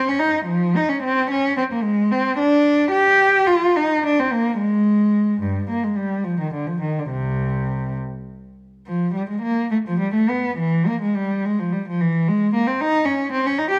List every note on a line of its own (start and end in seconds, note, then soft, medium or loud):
0.09 0.22 C#4 medium
0.20 0.49 D#4 medium
0.46 0.75 F3 medium
0.76 0.90 D#4 medium
0.89 1.03 C#4 medium
1.04 1.30 C4 medium
1.31 1.58 C#4 medium
1.57 1.63 C4 medium
1.72 1.85 A#3 medium
1.83 2.11 G#3 medium
2.12 2.39 C4 medium
2.39 2.93 D4 medium
2.92 3.47 G4 medium
3.47 3.75 F4 medium
3.76 4.04 D#4 medium
4.05 4.18 D4 medium
4.20 4.32 C4 medium
4.32 4.59 A#3 medium
4.58 5.40 G#3 medium
5.42 5.69 G2 medium
5.70 5.83 A#3 medium
5.84 5.98 G#3 soft
5.97 6.26 G3 medium
6.24 6.40 F3 medium
6.40 6.54 D#3 soft
6.54 6.69 D3 soft
6.67 6.83 F3 soft
6.81 6.97 D#3 soft
6.99 7.13 D3 soft
7.10 7.95 C2 soft
7.10 7.97 C3 soft
8.87 9.13 F3 medium
9.14 9.28 G3 medium
9.30 9.43 G#3 soft
9.43 9.70 A#3 medium
9.71 9.77 A3 medium
9.88 10.00 F3 medium
10.00 10.14 G3 medium
10.14 10.28 A3 medium
10.29 10.58 B3 medium
10.59 10.86 E3 medium
10.87 11.01 A#3 medium
11.01 11.14 G#3 medium
11.16 11.42 G3 medium
11.45 11.57 G#3 medium
11.59 11.71 F3 medium
11.73 11.84 G3 medium
11.88 11.99 F3 medium
12.01 12.26 E3 medium
12.28 12.53 G#3 medium
12.54 12.65 A#3 medium
12.67 12.79 C4 medium
12.81 13.06 D#4 medium
13.06 13.32 C#4 medium
13.32 13.45 C4 medium
13.46 13.59 C#4 medium
13.58 13.72 D#4 medium
13.70 13.79 G4 medium